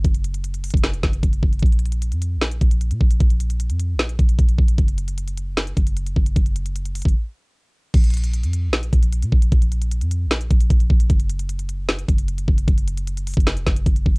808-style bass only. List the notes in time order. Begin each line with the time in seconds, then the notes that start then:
0.05 F#1
0.74 F#1
0.93 F1
1.03 F#1
1.23 F#1
1.43 F#1
1.63 A#1
2.12 F2
2.36 A#1
2.61 A#1
2.91 A#2
3.01 A#1
3.20 A#1
3.70 F2
3.94 A#1
4.19 A#1
4.39 A#1
4.58 A#1
4.78 F#1
5.77 F#1
6.16 F#1
6.36 F#1
7.05 F#1
7.94 A#1
8.43 F2
8.68 A#1
8.93 A#1
9.22 A#2
9.32 A#1
9.52 A#1
10.01 F2
10.26 A#1
10.51 A#1
10.70 A#1
10.90 A#1
11.10 F#1
12.09 F#1
12.48 F#1
12.68 F#1
13.37 F#1
13.57 F1
13.66 F#1
13.86 F#1
14.06 F#1